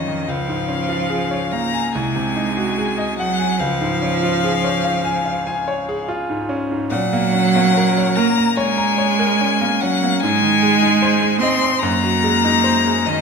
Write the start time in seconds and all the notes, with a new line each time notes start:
Already playing: A#1 F2 D#3 C#4 F4 A#4 C#5 D#5 F5 A#5
0.07 F2
0.27 C#2 F3 F5
0.48 G#2
0.68 C#4
0.89 F4
1.10 G#4
1.31 C#5
1.52 A#3 F5 A#5
1.74 G#5
1.93 C2 G#3 G#5
2.16 C3
2.36 D#4
2.57 F#4
2.78 G#4
2.98 D#5
3.18 F#3 F#5
3.39 G#5
3.59 C#2 F3 F5
3.81 G#2
4.02 C#4
4.23 F4
4.44 G#4
4.64 C#5
4.84 F5
5.05 G#5
5.25 F5
5.47 G#5
5.68 C#5
5.89 G#4
6.08 F4
6.30 G#2
6.49 C#4
6.71 G#2
6.90 A#2 F#3 F#5
7.13 A#3
7.34 C#4
7.56 A#3
7.77 A#4
7.98 C#5
8.16 A#3 A#4 A#5
8.38 A#5
8.57 G#3 C#5 G#5
8.77 A#5
8.98 C#5
9.19 A#4
9.41 C#4
9.61 A#3
9.81 F#3 C#4 F#5
10.03 A#3
10.20 G#2 G#3 G#5
10.42 D#3
10.63 G#3
10.83 D#4
11.02 C5
11.22 G#4
11.40 C4 D#5 C6
11.62 C6
11.80 F#2 A#3 A#5
12.04 F#3
12.24 G#3
12.44 D#4
12.64 C5
12.85 G#4
13.06 D#3 D#5